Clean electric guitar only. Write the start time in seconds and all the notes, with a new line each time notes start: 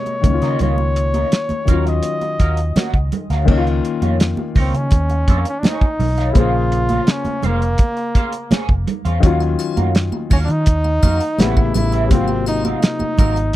0.07 muted clean electric guitar stroke
0.42 C#4 F4 A#4 D#5
0.60 C#4 F4 A#4 D#5
0.78 muted clean electric guitar stroke
0.96 muted clean electric guitar stroke
1.14 C#4 F4 A#4 D#5
1.32 muted clean electric guitar stroke
1.50 muted clean electric guitar stroke
1.68 C#4 F#4 A#4 F5
1.86 muted clean electric guitar stroke
2.22 muted clean electric guitar stroke
2.40 C#4 F#4 A#4 F5
2.58 muted clean electric guitar stroke
2.76 C#4 F#4 A#4 F#5
3.12 muted clean electric guitar stroke
3.30 C#4 F#4 A#4 F5
3.48 D#4 A#4 C#5 F5
3.66 muted clean electric guitar stroke
3.85 muted clean electric guitar stroke
4.03 D#4 A#4 C#5 F5
4.20 muted clean electric guitar stroke
4.39 muted clean electric guitar stroke
4.56 D#4 A#4 C#5 F5
4.74 muted clean electric guitar stroke
5.10 muted clean electric guitar stroke
5.28 D#4 A#4 C#5 F5
5.46 muted clean electric guitar stroke
5.63 D#4 A#4 C#5 G#5
6.00 muted clean electric guitar stroke
6.18 D#4 A#4 C#5 F5
6.36 C#4 G#4 C5 F5
6.54 muted clean electric guitar stroke
6.72 muted clean electric guitar stroke
6.90 C#4 G#4 C5 F5
7.08 muted clean electric guitar stroke
7.25 muted clean electric guitar stroke
7.43 C#4 G#4 C5 F5
7.61 muted clean electric guitar stroke
7.97 muted clean electric guitar stroke
8.15 C#4 G#4 C5 F5
8.33 muted clean electric guitar stroke
8.51 C#4 G#4 C5 G#5
8.87 muted clean electric guitar stroke
9.05 C#4 G#4 C5 F5
9.23 C#4 F#4 A#4 F5
9.41 muted clean electric guitar stroke
9.59 muted clean electric guitar stroke
9.77 C#4 F#4 A#4 F5
9.95 muted clean electric guitar stroke
10.13 muted clean electric guitar stroke
10.31 C#4 F#4 A#4 F5
10.49 muted clean electric guitar stroke
10.85 muted clean electric guitar stroke
11.03 C#4 F#4 A#4 F5
11.21 muted clean electric guitar stroke
11.39 C#4 G4 B4 F#5
11.75 muted clean electric guitar stroke
11.92 C#4 G4 B4 E5
12.10 C4 F#4 A#4 F5
12.29 muted clean electric guitar stroke
12.46 muted clean electric guitar stroke
12.65 C4 F#4 A#4 F5
12.83 muted clean electric guitar stroke
13.01 muted clean electric guitar stroke
13.18 C4 F#4 A#4 F5
13.36 muted clean electric guitar stroke